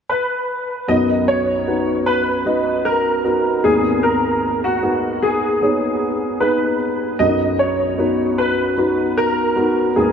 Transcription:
0.10 grand piano B4
0.88 upright piano B1 F#2 B3 D#4 F#4 A#4, grand piano D#5
1.28 grand piano C#5
1.67 upright piano B3 D#4 F#4 B4
2.06 grand piano B4
2.45 upright piano B3 D#4 F#4 D#5
2.85 grand piano A#4
3.24 upright piano B3 D#4 F#4 A#4
3.64 upright piano G#1 D#2 B3 D#4 G#4 A#4, grand piano G#4
4.03 grand piano A#4
4.64 grand piano F#4
4.82 upright piano B3 D#4 G#4 A#4
5.23 grand piano G#4
5.62 upright piano B3 D#4 G#4 C#5
6.40 upright piano B3 D#4 G#4 B4, grand piano B4
7.19 upright piano B1 F#2 B3 D4 F#4 A#4, grand piano D#5
7.25 upright piano D#4
7.59 grand piano C#5
7.98 upright piano B3 D#4 F#4 B4
8.38 grand piano B4
8.77 upright piano B3 D#4 F#4
9.18 grand piano A#4
9.56 upright piano B3 D#4 F#4 A#4
9.95 upright piano G#1 D#2 B3 D#4 G#4 A#4, grand piano G#4

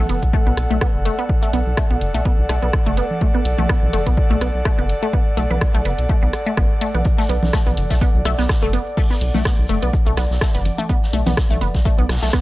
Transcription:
Already playing: analog synth pad B3 A4 D5 F#5
0.09 analog synth bass F#1, synth arpeggio sound B3, closed hi-hat
0.23 analog synth bass B1, kick, closed hi-hat
0.33 synth arpeggio sound A3, kick
0.47 analog synth bass B1, synth arpeggio sound B3
0.57 analog synth bass B1, cross-stick, closed hi-hat
0.71 analog synth bass B1, synth arpeggio sound A3
0.81 synth arpeggio sound B3, kick, cross-stick
0.95 analog synth bass F#1
1.05 synth arpeggio sound A3, closed hi-hat
1.19 synth arpeggio sound B3
1.29 kick
1.43 synth arpeggio sound A3
1.53 analog synth bass B1, synth arpeggio sound B3, closed hi-hat
1.67 analog synth bass B1
1.77 synth arpeggio sound A3, kick, cross-stick, closed hi-hat
1.91 analog synth bass B1, synth arpeggio sound B3
2.01 analog synth bass F#1, closed hi-hat
2.14 analog synth bass B1, synth arpeggio sound A3, closed hi-hat
2.25 synth arpeggio sound B3, kick
2.39 analog synth bass B1
2.49 analog synth bass B1, synth arpeggio sound A3, cross-stick, closed hi-hat
2.62 analog synth bass B1, synth arpeggio sound B3
2.73 kick, cross-stick
2.86 analog synth bass F#1, synth arpeggio sound A3
2.97 synth arpeggio sound B3, closed hi-hat
3.11 high conga
3.21 synth arpeggio sound A3, kick
3.35 synth arpeggio sound B3
3.45 analog synth bass B1, closed hi-hat
3.58 analog synth bass B1, synth arpeggio sound A3, high conga
3.69 synth arpeggio sound B3, kick, cross-stick, closed hi-hat
3.83 analog synth bass B1, high conga
3.93 analog synth bass F#1, synth arpeggio sound A3, closed hi-hat
4.06 analog synth bass B1, synth arpeggio sound B3, kick, closed hi-hat
4.17 kick
4.30 analog synth bass B1, synth arpeggio sound A3
4.41 analog synth bass B1, synth arpeggio sound B3, cross-stick, closed hi-hat
4.55 analog synth bass B1
4.65 synth arpeggio sound A3, kick, cross-stick
4.79 analog synth bass F#1, synth arpeggio sound B3
4.89 closed hi-hat
5.03 synth arpeggio sound A3
5.13 synth arpeggio sound B3, kick
5.37 analog synth bass B1, synth arpeggio sound A3, closed hi-hat
5.51 analog synth bass B1, synth arpeggio sound B3, high conga
5.61 kick, cross-stick, closed hi-hat
5.74 analog synth bass B1, synth arpeggio sound A3
5.85 analog synth bass F#1, synth arpeggio sound B3, closed hi-hat
5.99 analog synth bass B1, closed hi-hat
6.09 synth arpeggio sound A3, kick
6.23 analog synth bass B1, synth arpeggio sound B3
6.33 cross-stick, closed hi-hat
6.46 synth arpeggio sound A3
6.57 analog synth bass A1, synth arpeggio sound B3, kick, cross-stick
6.81 synth arpeggio sound A3, closed hi-hat
6.94 analog synth bass B1, synth arpeggio sound B3, high conga
7.05 synth texture D5, kick, cabasa, shaker
7.18 synth arpeggio sound A3, snare, cabasa
7.29 analog synth bass B1, synth arpeggio sound B3, closed hi-hat, cabasa, shaker
7.43 analog synth bass B1, snare, high conga, low conga, cabasa
7.53 synth arpeggio sound A3, kick, cross-stick, snare, closed hi-hat, cabasa, shaker
7.66 analog synth bass B1, synth arpeggio sound B3, high conga, cabasa
7.77 analog synth bass F#1, closed hi-hat, cabasa, shaker
7.91 analog synth bass B1, synth arpeggio sound A3, kick, snare, closed hi-hat, cabasa
8.01 synth arpeggio sound B3, kick, cabasa, shaker
8.15 analog synth bass B1, cabasa
8.25 analog synth bass B1, synth arpeggio sound A3, cross-stick, closed hi-hat, cabasa, shaker
8.39 analog synth bass B1, synth arpeggio sound B3, snare, cabasa
8.49 kick, cross-stick, snare, cabasa, shaker
8.62 analog synth bass F#1, synth arpeggio sound A3
8.73 synth arpeggio sound B3, closed hi-hat, cabasa, shaker
8.86 cabasa
8.97 synth arpeggio sound A3, kick, open hi-hat, cabasa
9.10 synth arpeggio sound B3, snare, cabasa
9.21 analog synth bass B1, closed hi-hat, cabasa, shaker
9.35 analog synth bass B1, synth arpeggio sound A3, snare, low conga, cabasa
9.45 synth arpeggio sound B3, kick, cross-stick, snare, closed hi-hat, cabasa, shaker
9.59 analog synth bass B1, cabasa
9.68 analog synth bass F#1, synth arpeggio sound A3, closed hi-hat, cabasa, shaker
9.82 analog synth bass B1, synth arpeggio sound B3, closed hi-hat, cabasa
9.93 kick, cabasa, shaker
10.06 analog synth bass B1, synth arpeggio sound A3, cabasa
10.17 analog synth bass B1, synth arpeggio sound B3, cross-stick, snare, closed hi-hat, cabasa, shaker
10.30 analog synth bass B1, snare, cabasa
10.41 synth arpeggio sound A3, kick, cross-stick, snare, cabasa, shaker
10.54 analog synth bass F#1, synth arpeggio sound B3, snare
10.65 closed hi-hat, low conga, cabasa, shaker
10.78 synth arpeggio sound A3, high conga, cabasa
10.89 synth arpeggio sound B3, kick, cabasa, shaker
11.03 snare, cabasa
11.13 analog synth bass B1, synth arpeggio sound A3, closed hi-hat, cabasa, shaker
11.26 analog synth bass B1, synth arpeggio sound B3, snare, high conga, low conga, cabasa
11.37 kick, cross-stick, snare, closed hi-hat, cabasa, shaker
11.50 analog synth bass B1, synth arpeggio sound A3, high conga, cabasa
11.61 analog synth bass F#1, synth arpeggio sound B3, closed hi-hat, cabasa, shaker
11.75 analog synth bass B1, kick, snare, closed hi-hat, cabasa
11.85 synth arpeggio sound A3, kick, cabasa, shaker
11.98 analog synth bass B1, synth arpeggio sound B3, cabasa
12.09 analog synth bass B1, cross-stick, snare, closed hi-hat, cabasa, shaker
12.16 snare, shaker
12.22 analog synth bass B1, synth arpeggio sound A3, snare, cabasa, shaker
12.27 snare, shaker
12.33 synth arpeggio sound B3, kick, cross-stick, snare, cabasa

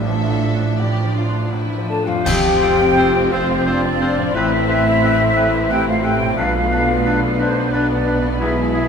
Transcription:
Already playing: double bass section A1, cello section A2, harp A2 F3 D4
0.00 harp A4, violin section E5
0.05 grand piano A1, viola section F3 D4, violin section D4 A4
0.30 grand piano A2
0.55 grand piano D4
0.78 grand piano A2, viola section F3 D4, violin section G4 D5
1.04 grand piano F3
1.15 violin section F4
1.29 grand piano D4
1.51 grand piano A2, violin section E4
1.78 grand piano F3
1.88 violin section D4, french horn section A4, flute section A5
2.03 grand piano D4, french horn section F4
2.07 harp F2, flute section F5
2.12 harp C4
2.16 harp F4
2.21 harp G4, french horn section G4, oboe C5
2.25 double bass section F1, cello section F2, grand piano F2, violin section C4 F4, viola section C4, clarinet C4, flute section G5, concert bass drum, crash
2.45 grand piano G4
2.61 clarinet C4, grand piano F4, oboe C5
2.81 grand piano C4
2.97 clarinet C4, grand piano F4, oboe C5
3.17 grand piano C4
3.32 clarinet C4, french horn section C4, grand piano F4, oboe C5, flute section C5
3.51 grand piano G4
3.66 clarinet C4, french horn section D4, grand piano F4, oboe C5, flute section D5
3.85 grand piano C4
4.01 clarinet C4, grand piano F4, oboe C5
4.18 harp A2, grand piano C4
4.22 harp C4
4.27 harp E4
4.31 french horn section E4, violin section E4, harp B5
4.35 double bass section A1, grand piano A1, cello section A2, viola section A3, clarinet C4, oboe B4, flute section E5
4.53 grand piano B4
4.69 clarinet C4, grand piano E4, oboe B4
4.86 grand piano C4
5.02 clarinet C4, grand piano E4, oboe B4
5.21 grand piano C4
5.36 clarinet C4, grand piano E4, oboe B4
5.55 grand piano B4
5.70 clarinet C4, grand piano E4, french horn section G4, oboe B4, flute section G5
5.88 grand piano C4, french horn section F4, flute section F5
6.03 clarinet C4, grand piano E4, french horn section G4, oboe B4, flute section G5
6.20 harp B2, grand piano C4
6.29 harp D4
6.33 violin section D4, french horn section F4, oboe B4, harp D5
6.38 double bass section B1, grand piano B1, cello section B2, violin section B3, clarinet D4, flute section F5
6.56 grand piano B4
6.72 clarinet D4, grand piano D4, oboe B4
6.91 grand piano B3
7.05 clarinet D4, grand piano D4, oboe B4
7.25 grand piano B3
7.38 french horn section D4, clarinet D4, grand piano D4, oboe B4, flute section C5
7.58 grand piano B4
7.73 clarinet D4, french horn section D4, grand piano D4, oboe B4, flute section D5
7.91 grand piano B3
8.07 clarinet D4, grand piano D4, oboe B4
8.23 harp B2, grand piano B3
8.27 harp B3
8.32 harp E4
8.36 harp G#4, flute section E5
8.40 grand piano B1, viola section G#3, clarinet E4, french horn section E4, violin section E4, oboe G#4
8.58 grand piano G#4
8.74 clarinet E4, grand piano E4, oboe G#4

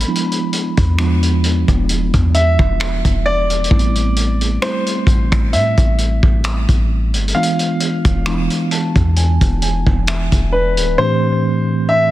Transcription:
Already playing: grand piano B5
0.00 closed hi-hat
0.07 tine electric piano F3 G3 B3 D4 E4
0.14 tine electric piano G#3, closed hi-hat
0.32 closed hi-hat
0.53 closed hi-hat
0.77 808-style bass E2, kick, closed hi-hat
0.98 tine electric piano F3 G#3 B3 D4 F4, finger snap, closed hi-hat
1.23 closed hi-hat
1.44 closed hi-hat
1.68 808-style bass E1, kick, closed hi-hat
1.89 closed hi-hat
2.14 808-style bass E2, kick, closed hi-hat
2.34 grand piano E5, closed hi-hat
2.59 808-style bass E1, kick
2.80 finger snap, closed hi-hat
3.05 808-style bass E1, kick, closed hi-hat
3.26 grand piano D5
3.50 closed hi-hat
3.64 closed hi-hat
3.71 808-style bass A1, tine electric piano G3 A3 B3 C4 E4, kick
3.79 closed hi-hat
3.95 closed hi-hat
4.16 closed hi-hat
4.41 closed hi-hat
4.62 tine electric piano G3 A3 C4 E4, grand piano C5, finger snap, closed hi-hat
4.86 closed hi-hat
5.07 808-style bass A1, kick, closed hi-hat
5.32 finger snap, kick, closed hi-hat
5.53 808-style bass A2, grand piano E5, closed hi-hat
5.77 808-style bass A1, kick, closed hi-hat
5.98 closed hi-hat
6.23 808-style bass A1, kick
6.44 finger snap, closed hi-hat
6.69 808-style bass A1, kick, closed hi-hat
7.14 808-style bass G1, closed hi-hat
7.28 closed hi-hat
7.34 tine electric piano E3 G#3 B3 D4 F4, grand piano F5
7.43 closed hi-hat
7.59 closed hi-hat
7.80 closed hi-hat
8.05 808-style bass E1, kick, closed hi-hat
8.25 tine electric piano E3 G#3 B3 D4 E4, finger snap, closed hi-hat
8.50 closed hi-hat
8.71 tine electric piano A5, closed hi-hat
8.95 808-style bass E2, kick, closed hi-hat
9.16 tine electric piano G#5, closed hi-hat
9.41 808-style bass E1, kick, closed hi-hat
9.62 tine electric piano G#5, closed hi-hat
9.87 808-style bass E1, kick
10.07 tine electric piano E5, finger snap, closed hi-hat
10.32 808-style bass E1, kick, closed hi-hat
10.52 grand piano B4, tine electric piano D5
10.77 808-style bass D1, closed hi-hat
10.98 tine electric piano A2 E3 A3 C4 D4 G4, grand piano C5
11.89 grand piano E5

